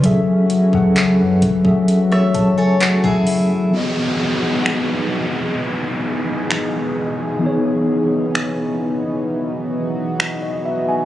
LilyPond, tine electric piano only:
\new Staff \with { instrumentName = "Tine electric piano" } { \time 4/4 \key e \major \tempo 4 = 65 << { r2 r8 a''16 gis''16 fis''8 e''8 | r1 | r2. r16 dis''16 e''16 gis''16 | } \\ { <fis cis' gis' a' e''>8. <fis cis' gis' a' fis''>8. r16 <fis cis' gis' a' e''>4.~ <fis cis' gis' a' e''>16 r8 | <e b fis' g' gis' dis''>1 | <e b dis' gis' cis''>1 | } >> }